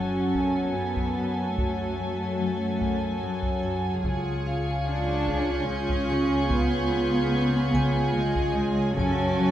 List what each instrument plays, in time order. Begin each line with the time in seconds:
Already playing: harp F#2 F#3, double bass section F#2, cello section C#4, vibraphone F#4 F#5, viola section F#4, violin section A4 G#5, ambient pad C#5 F#5 G#5, impact
0.35 harp F#2, taiko
0.76 harp F#2, cello section B3
0.96 taiko
1.19 harp F#2
1.57 harp F#2, cello section A3, taiko
1.99 harp F#3
2.40 harp F#3
2.81 harp F#2, taiko
3.22 harp F#2, cello section F#3
3.43 taiko
3.63 harp F#2, vibraphone G#5
4.03 double bass section C#2, harp C#3, viola section F4, violin section G#4 G#5 C#6, ambient pad C#5 F5 G#5, taiko
4.46 harp C#4, vibraphone F4 F5
4.86 harp C#4, cello section D4, violin section G6
5.28 harp C#3, taiko
5.69 harp C#3, cello section C#4
5.89 taiko
6.10 harp C#3, vibraphone G#4 C#6
6.50 harp C#3, cello section B3, taiko
6.93 harp C#4
7.33 harp C#4
7.74 harp C#3, vibraphone G#5, taiko
8.15 harp C#3, cello section G#3
8.35 taiko
8.57 harp C#3
8.97 harp F#2, double bass section F#2, cello section C#4, viola section F#4, violin section A4 C#5 G#5 D7, ambient pad C#5 F#5 G#5, vibraphone C#5, taiko
9.39 harp F#3